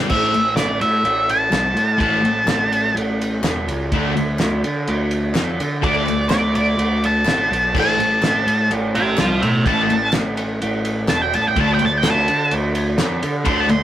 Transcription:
Already playing: picked electric bass G#1, distorted electric guitar G3
0.09 picked electric bass A1, distorted electric guitar A2 E3 A3, lead electric guitar E5, kick, crash
0.34 picked electric bass A1, ride
0.56 picked electric bass A1, lead electric guitar D5, snare, clap, ride
0.81 picked electric bass A2, lead electric guitar E5, ride
1.04 picked electric bass A1, ride
1.29 lead electric guitar A5, ride
1.51 picked electric bass C2, snare, clap, ride
1.74 picked electric bass A2, ride
1.98 picked electric bass A1, distorted electric guitar A2 E3 A3, lead electric guitar A5, kick, ride
2.23 picked electric bass A1, ride
2.46 picked electric bass A1, snare, clap, ride
2.72 ride
2.95 picked electric bass A1, ride
3.21 ride
3.43 picked electric bass E1, snare, clap, ride
3.67 picked electric bass C#2, ride
3.91 picked electric bass D2, distorted electric guitar D3 A3 D4, kick, ride
4.16 picked electric bass D2, ride
4.39 picked electric bass D2, snare, clap, ride
4.64 picked electric bass D3, ride
4.88 picked electric bass D2, ride
5.11 ride
5.35 picked electric bass F2, snare, clap, ride
5.60 picked electric bass D3, ride
5.82 picked electric bass D2, distorted electric guitar D3 A3 D4, lead electric guitar D5, kick, ride
6.06 picked electric bass D2, clap, ride
6.30 picked electric bass D2, lead electric guitar D5, snare, clap, ride
6.55 lead electric guitar D5, ride
6.77 picked electric bass D2, ride
7.04 lead electric guitar A5, ride
7.25 picked electric bass A1, snare, clap, ride
7.51 picked electric bass B1, ride
7.74 picked electric bass A1, distorted electric guitar A2 E3 A3, kick, crash
7.80 lead electric guitar A5
7.98 picked electric bass A1, ride
8.22 picked electric bass A1, snare, clap, ride
8.46 picked electric bass A2, ride
8.70 picked electric bass A1, ride
8.95 lead electric guitar E5 C6, ride
9.18 picked electric bass C2, lead electric guitar C5 A5, snare, clap, ride
9.42 picked electric bass A2, lead electric guitar E5 G5, ride
9.65 picked electric bass A1, distorted electric guitar A2 E3 A3, lead electric guitar A5, kick, ride
9.90 picked electric bass A1, ride
10.13 picked electric bass A1, snare, clap, ride
10.37 ride
10.62 picked electric bass A1, ride
10.85 ride
11.08 picked electric bass E1, lead electric guitar A5, snare, clap, ride
11.22 lead electric guitar G5
11.34 picked electric bass A1, lead electric guitar A5, ride
11.48 lead electric guitar G5
11.56 picked electric bass D2, distorted electric guitar D3 A3 D4, kick, ride
11.61 lead electric guitar A5
11.74 lead electric guitar G5
11.79 picked electric bass D2, ride
11.85 lead electric guitar A5
11.97 lead electric guitar G5
12.03 picked electric bass D2, snare, clap, ride
12.10 lead electric guitar A5
12.28 picked electric bass D3, ride
12.51 picked electric bass D2, ride
12.75 ride
12.98 picked electric bass F2, snare, clap, ride
13.23 picked electric bass D3, ride
13.45 picked electric bass D2, distorted electric guitar D3 A3 D4, lead electric guitar C6, kick, ride
13.60 lead electric guitar A5
13.69 picked electric bass D2, lead electric guitar C6, clap, ride

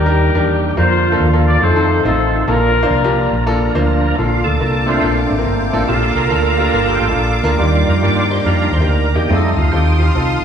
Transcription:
Already playing: fingered electric bass D#2, tonewheel organ G3 A#3 G4, horn section D4 G4 A#4
0.06 grand piano D4 D#4 G4 A#4
0.35 fingered electric bass E2, grand piano D#3 D4 G4 A#4
0.77 fingered electric bass F2, tonewheel organ D3 F3 F4, grand piano A#3 D4 F4 A#4, horn section F4 C5
1.12 grand piano A#3 D4 F4 A4
1.20 fingered electric bass D#2
1.33 grand piano A#3 D4 F4 A4
1.48 horn section D5
1.62 fingered electric bass F2, tonewheel organ D#3 A3 C4, horn section D#4 A4 C5
1.76 grand piano C4 D#4 F4 A4
2.05 fingered electric bass A1, horn section C4 D#4 A4, grand piano C4 D#4 F4 C5
2.47 fingered electric bass A#1, grand piano A#2 A#3 D4 F4 A4, tonewheel organ F3 A#3 D4 A#4, horn section D4 F4 A#4
2.83 grand piano A#3 D4 F4 C5
2.91 fingered electric bass C2
3.04 grand piano A#3 D4 F4 G4
3.33 fingered electric bass A#1
3.46 grand piano A#3 D4 F4 A4
3.75 fingered electric bass D2, grand piano A#3 D4 F4 C5
4.17 fingered electric bass A#1, grand piano A#2 A#3 C4 F4 A4, tonewheel organ F4, string section F5 A5 D6
4.24 grand piano D4
4.44 fingered electric bass D2, tonewheel organ A4
4.60 fingered electric bass C2, grand piano A#3 D4 F4 A#4
4.86 tonewheel organ A3 C4 D4 F4, grand piano A#3 D4 F4 A4
5.04 fingered electric bass A#1, grand piano A#3 D4 F4 A4
5.16 tonewheel organ D4
5.31 fingered electric bass A1
5.38 grand piano A#3 D4 F4 A#4
5.46 fingered electric bass G1
5.73 fingered electric bass A1, grand piano A#3 D4 F4 A4
5.87 fingered electric bass A#1, grand piano A#2 A#3 D4 F4 G4, tonewheel organ A#3 F4 A4, string section G5
6.15 fingered electric bass C2, tonewheel organ A#4
6.31 fingered electric bass D2, grand piano A#3 D4 F4 A4
6.58 grand piano A#3 D4 F4 G4, tonewheel organ A#4
6.73 fingered electric bass G1, grand piano A#3 D4 F4 A#4
6.88 tonewheel organ G4
7.01 fingered electric bass A1
7.09 grand piano A#3 D4 F4 A4
7.16 fingered electric bass A#1
7.43 fingered electric bass D2, grand piano A#3 D4 F4 A#4
7.57 fingered electric bass D#2, grand piano D#3 A#3 D4 D#4 G4, tonewheel organ G3 F4 D5, string section D5 G5 A#5
7.88 fingered electric bass F2, tonewheel organ A#4
8.02 fingered electric bass G2, grand piano A#3 D4 D#4 G4, tonewheel organ D5
8.30 grand piano A#3 D4 D#4 G4, tonewheel organ C5
8.44 fingered electric bass F2, tonewheel organ G3 D4 F4 A#4, grand piano A#3 D4 D#4 G4
8.73 fingered electric bass D#2, tonewheel organ C5
8.80 grand piano A#3 D4 D#4 G4
8.86 fingered electric bass D2, tonewheel organ A#4
9.15 fingered electric bass E2, grand piano A#3 D4 D#4 G4, tonewheel organ G4
9.28 fingered electric bass F2, tonewheel organ G3 A3 D#4, grand piano C4 D#4 F4 G#4, string section F5 A5 C6 D#6
9.36 grand piano A4
9.57 fingered electric bass D2, tonewheel organ F4
9.72 fingered electric bass D#2, grand piano C4 D#4 F4 A4, tonewheel organ G4
9.98 grand piano C4 D#4 F4 G4, tonewheel organ F4
10.15 fingered electric bass C2, grand piano C4 D#4 F4 A4

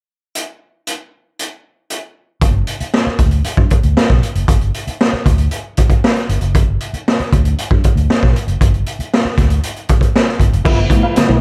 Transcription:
0.35 closed hi-hat
0.87 closed hi-hat
1.39 closed hi-hat
1.90 closed hi-hat
2.41 fingered electric bass G1, kick, closed hi-hat
2.67 closed hi-hat
2.80 muted fingered electric bass stroke, closed hi-hat
2.94 snare
3.07 muted fingered electric bass stroke
3.18 fingered electric bass D2, kick, closed hi-hat
3.31 closed hi-hat
3.44 muted fingered electric bass stroke, closed hi-hat
3.57 fingered electric bass G2, kick
3.70 kick, closed hi-hat
3.83 fingered electric bass D2, closed hi-hat
3.97 snare
4.10 fingered electric bass B1, kick, snare
4.23 closed hi-hat
4.35 fingered electric bass F#1, closed hi-hat
4.48 fingered electric bass G1, kick, closed hi-hat
4.61 closed hi-hat
4.74 closed hi-hat
4.87 muted fingered electric bass stroke, closed hi-hat
5.01 snare
5.13 muted fingered electric bass stroke
5.26 fingered electric bass D2, kick, closed hi-hat
5.38 closed hi-hat
5.51 closed hi-hat
5.77 kick, closed hi-hat
5.90 kick, closed hi-hat
6.04 snare
6.16 snare, closed hi-hat
6.29 fingered electric bass G1, closed hi-hat
6.41 fingered electric bass F#1, closed hi-hat
6.55 fingered electric bass G1, kick, closed hi-hat
6.80 closed hi-hat
6.93 muted fingered electric bass stroke, closed hi-hat
7.08 snare
7.20 muted fingered electric bass stroke, closed hi-hat
7.33 fingered electric bass D2, kick, closed hi-hat
7.45 closed hi-hat
7.58 closed hi-hat
7.71 fingered electric bass G2, kick
7.84 kick, closed hi-hat
7.96 fingered electric bass D2, closed hi-hat
8.08 muted fingered electric bass stroke, snare
8.23 fingered electric bass B1, kick, snare
8.36 closed hi-hat
8.47 fingered electric bass F#1, closed hi-hat
8.61 fingered electric bass G1, kick, closed hi-hat
8.74 closed hi-hat
8.86 closed hi-hat
8.99 muted fingered electric bass stroke, closed hi-hat
9.14 snare
9.25 muted fingered electric bass stroke
9.38 fingered electric bass D2, kick, snare, closed hi-hat
9.50 closed hi-hat
9.63 closed hi-hat
9.76 closed hi-hat
9.89 kick, closed hi-hat
10.01 kick, closed hi-hat
10.16 snare
10.29 snare
10.40 fingered electric bass G1, kick, closed hi-hat
10.52 fingered electric bass F#1, closed hi-hat
10.64 fingered electric bass G1, reed electric piano G2 D3, tonewheel organ F3 A3 B3 E4, clean electric guitar F4 B4 E5, kick, crash
10.77 reed electric piano B3 E4
10.90 reed electric piano F3 A3 B3 E4, muted clean electric guitar stroke, kick, closed hi-hat
11.03 clean electric guitar F4 B4 F5, muted fingered electric bass stroke
11.15 reed electric piano G2 D3, muted clean electric guitar stroke, muted fingered electric bass stroke, snare, closed hi-hat
11.28 fingered electric bass B1, reed electric piano F3 A3 B3 E4, muted clean electric guitar stroke

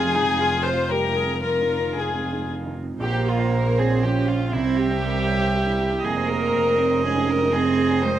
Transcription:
Already playing: double bass F1, grand piano F2, viola F4, violin section G#4
0.03 cello F3, grand piano F4
0.15 cello G3, viola D#4
0.22 grand piano C3
0.29 cello G#3
0.39 cello G3, grand piano F4, viola F4
0.53 cello F3, grand piano C4
0.64 cello C3, violin section C5
0.73 grand piano F4
0.78 cello F3
0.90 cello G3, grand piano G3, viola G4, violin section A#4
1.04 cello G#3
1.09 grand piano F4
1.16 cello G3, viola G#4
1.25 grand piano C4
1.30 cello F3
1.43 cello F2, grand piano F2, viola F4, violin section A#4
1.55 cello G#2
1.61 grand piano D#4
1.68 cello C3
1.78 grand piano C3, cello D#3
1.95 cello C3, grand piano D#4, violin section G#4
2.08 cello G#2
2.14 grand piano C4
2.22 cello F2
2.32 cello G#2, grand piano D#4
2.48 cello C3, grand piano F3
2.60 cello D#3
2.66 grand piano D#4
2.77 cello C3
2.83 grand piano C4
2.90 cello G#2
3.00 grand piano A#1, double bass A#1, cello A#3, violin section G4, viola C5
3.12 grand piano C5
3.26 grand piano F4, violin section F4
3.39 grand piano C5
3.51 grand piano A#4, violin section A#4
3.64 grand piano C5
3.77 cello C4, violin section G#4, grand piano C#5
3.91 grand piano C5
4.03 grand piano F3, cello C#4, violin section G4
4.16 grand piano C#4
4.27 grand piano F3, violin section F4
4.40 grand piano C#4
4.52 grand piano C2, double bass C2, cello C4, violin section E4, viola E5
4.66 grand piano C5
4.79 grand piano G4, violin section G4
4.91 grand piano C5
5.02 cello G3, grand piano A#4
5.16 grand piano C5
5.28 grand piano C#5
5.42 grand piano C5
5.54 grand piano G3
5.67 grand piano E4
5.79 grand piano G3
5.92 grand piano E4
6.03 double bass F1, grand piano F2, cello A#3, violin section G#4, viola D#5
6.17 grand piano C5
6.28 grand piano G#4, violin section A#4
6.42 grand piano C5
6.54 grand piano A#4
6.67 grand piano C5
6.78 cello C4, grand piano C#5
6.91 grand piano C5
7.03 grand piano G#3, cello C#4, violin section G#4
7.16 grand piano D#4
7.28 grand piano G#3, violin section A#4
7.41 grand piano D#4
7.53 grand piano F2, cello C4, violin section G#4
7.65 grand piano C5
7.78 grand piano G#4
7.91 grand piano C5
8.03 cello G#3, grand piano A#4, violin section C5
8.16 grand piano C5

